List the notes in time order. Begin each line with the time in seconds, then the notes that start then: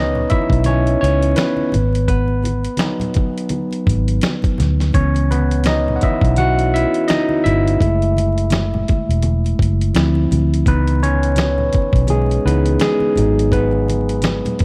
Already playing: C#2 E3 B3 C#4 D#4 B4 C#5 D#5
0.15 low conga
0.30 E4 E5, muted fingered electric bass stroke, kick, closed hi-hat, high conga
0.50 B1, kick, closed hi-hat
0.64 C#4 C#5, closed hi-hat, muted conga, high conga
0.86 closed hi-hat, muted conga
1.01 C#2 C#4 C#5, closed hi-hat
1.23 closed hi-hat
1.36 B3 B4, finger snap, snare, closed hi-hat, muted conga, high conga
1.57 muted conga, high conga
1.72 G#1, closed hi-hat, low conga
1.95 closed hi-hat
2.08 B3 B4, kick, closed hi-hat
2.28 muted conga
2.44 closed hi-hat, high conga
2.65 closed hi-hat
2.77 F#3 B3, finger snap, snare, closed hi-hat, muted conga, high conga
2.81 D#4
3.00 closed hi-hat, muted conga, low conga
3.14 kick, closed hi-hat, high conga
3.38 closed hi-hat
3.49 closed hi-hat, muted conga, high conga
3.71 closed hi-hat, muted conga
3.87 G#1, kick, closed hi-hat
4.08 closed hi-hat
4.21 finger snap, snare, closed hi-hat, muted conga, high conga
4.42 kick, closed hi-hat, muted conga, high conga
4.58 D2, snare, closed hi-hat, low conga
4.80 snare, closed hi-hat
4.93 C#2 E3 B3 C#4 C#5, kick, closed hi-hat, muted conga
5.15 closed hi-hat, muted conga
5.31 B3 B4, closed hi-hat, high conga
5.51 closed hi-hat
5.64 D#5, finger snap, snare, closed hi-hat, muted conga, high conga
5.68 D#4
5.88 muted conga, low conga
5.96 F#5
6.01 E3 B3 E4 D#5 E5, muted fingered electric bass stroke, kick, closed hi-hat, high conga
6.21 B1, kick, closed hi-hat
6.36 F#4 F#5, closed hi-hat, muted conga, high conga
6.59 closed hi-hat, muted conga
6.74 E4 E5, closed hi-hat
6.94 closed hi-hat
7.08 D#4 D#5, finger snap, snare, closed hi-hat, muted conga, high conga
7.29 muted conga, high conga
7.44 G1 E4 E5, closed hi-hat, low conga
7.68 closed hi-hat
7.80 F#1 G#3 A3 E4, kick, closed hi-hat
8.02 closed hi-hat
8.17 closed hi-hat, high conga
8.38 closed hi-hat
8.50 finger snap, snare, closed hi-hat, muted conga, high conga
8.74 muted conga, low conga
8.88 muted fingered electric bass stroke, kick, closed hi-hat, high conga
9.09 E1, closed hi-hat
9.22 closed hi-hat, muted conga, high conga
9.44 closed hi-hat, muted conga
9.59 F#1, kick, closed hi-hat
9.81 closed hi-hat
9.94 D2 F3 C4 E4, finger snap, snare, closed hi-hat, muted conga, high conga
10.15 muted conga, high conga
10.31 D2, closed hi-hat, low conga
10.54 closed hi-hat
10.66 C#2 E3 B3 D#4 B4, kick, closed hi-hat, muted conga
10.87 closed hi-hat, muted conga
11.02 C#4 C#5, closed hi-hat, high conga
11.23 closed hi-hat
11.36 finger snap, snare, closed hi-hat, muted conga, high conga
11.58 muted conga, low conga
11.73 muted fingered electric bass stroke, kick, closed hi-hat, high conga
11.93 B1, kick, closed hi-hat
12.07 G#3 G#4, closed hi-hat, muted conga, high conga
12.30 closed hi-hat, muted conga
12.45 C#2 E3 B3 D#4 B4, closed hi-hat
12.66 closed hi-hat
12.80 G#3 G#4, finger snap, snare, closed hi-hat, muted conga, high conga
13.00 muted conga, high conga
13.16 G#1 F#3 B3 D#4, closed hi-hat, low conga
13.39 closed hi-hat
13.52 B3 B4, kick, closed hi-hat, muted conga
13.72 muted conga
13.88 closed hi-hat, high conga
14.09 closed hi-hat
14.22 finger snap, snare, closed hi-hat, muted conga, high conga
14.45 closed hi-hat, muted conga, low conga
14.59 muted fingered electric bass stroke, kick, closed hi-hat, high conga